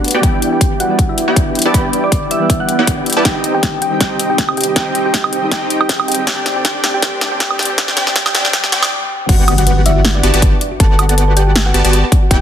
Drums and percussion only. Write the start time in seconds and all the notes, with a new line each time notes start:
0.04 closed hi-hat
0.08 closed hi-hat
0.11 closed hi-hat
0.23 kick, closed hi-hat
0.42 closed hi-hat
0.61 kick, closed hi-hat
0.80 closed hi-hat
0.99 kick, closed hi-hat
1.18 closed hi-hat
1.36 kick, closed hi-hat
1.55 closed hi-hat
1.59 closed hi-hat
1.62 closed hi-hat
1.74 kick, closed hi-hat
1.93 closed hi-hat
2.12 kick, closed hi-hat
2.31 closed hi-hat
2.50 kick, closed hi-hat
2.69 closed hi-hat
2.87 kick, closed hi-hat
3.06 closed hi-hat
3.10 closed hi-hat
3.13 closed hi-hat
3.25 kick, snare, closed hi-hat
3.44 closed hi-hat
3.63 kick, snare, closed hi-hat
3.82 closed hi-hat
4.01 kick, snare, closed hi-hat
4.19 closed hi-hat
4.38 kick, snare, closed hi-hat
4.49 high woodblock
4.57 closed hi-hat
4.61 closed hi-hat
4.64 closed hi-hat
4.76 kick, snare, closed hi-hat
4.95 closed hi-hat
5.14 kick, snare, closed hi-hat
5.24 high woodblock
5.33 closed hi-hat
5.51 kick, snare, closed hi-hat
5.70 closed hi-hat
5.81 high woodblock
5.89 kick, snare, closed hi-hat
6.00 high woodblock
6.08 closed hi-hat
6.12 closed hi-hat
6.15 closed hi-hat
6.27 kick, snare, closed hi-hat
6.46 snare, closed hi-hat
6.65 kick, snare, closed hi-hat
6.84 snare, closed hi-hat
7.02 kick, snare, closed hi-hat
7.21 snare, closed hi-hat
7.40 kick, snare, closed hi-hat
7.50 high woodblock
7.59 snare, closed hi-hat
7.63 closed hi-hat
7.65 closed hi-hat
7.78 kick, snare, closed hi-hat
7.88 snare
7.97 snare, closed hi-hat
8.07 snare
8.16 kick, snare, closed hi-hat
8.26 snare, high woodblock
8.35 snare, closed hi-hat
8.45 snare
8.53 kick, snare, closed hi-hat
8.64 snare
8.72 snare, closed hi-hat
8.83 snare, high woodblock
9.29 kick, closed hi-hat, crash
9.48 closed hi-hat, high woodblock
9.58 closed hi-hat
9.67 closed hi-hat
9.86 closed hi-hat
10.05 snare, closed hi-hat
10.23 closed hi-hat
10.34 closed hi-hat
10.42 kick, closed hi-hat
10.61 closed hi-hat
10.80 kick, closed hi-hat
10.99 closed hi-hat, high woodblock
11.09 closed hi-hat
11.18 closed hi-hat
11.37 closed hi-hat
11.56 snare, closed hi-hat
11.74 closed hi-hat
11.85 closed hi-hat
11.93 closed hi-hat
12.12 kick, closed hi-hat
12.31 kick, closed hi-hat